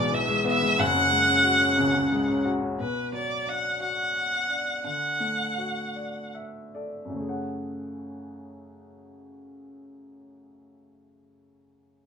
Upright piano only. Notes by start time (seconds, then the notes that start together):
Already playing: E1 B1 E2 B2 E3 G#3 B3
0.11 E3
0.28 G#3
0.44 B3
0.61 G#3
0.78 F#1 F#2
0.95 C#3
1.11 G#3
1.28 C#4
1.44 F#4
1.61 C#4
1.77 C#2 C#3
1.94 C#3
2.12 G#3
2.28 C#4
2.45 F#4
2.62 C#4
2.78 B2
3.12 F#3
3.46 D4
3.80 F#4
4.49 D4
4.84 D3
5.20 A3
5.58 F#4
5.96 D5
6.35 E5
6.75 A4 D5
7.05 F#2
7.10 C#3
7.15 A3
7.20 G#4
7.24 C#5
7.29 F#5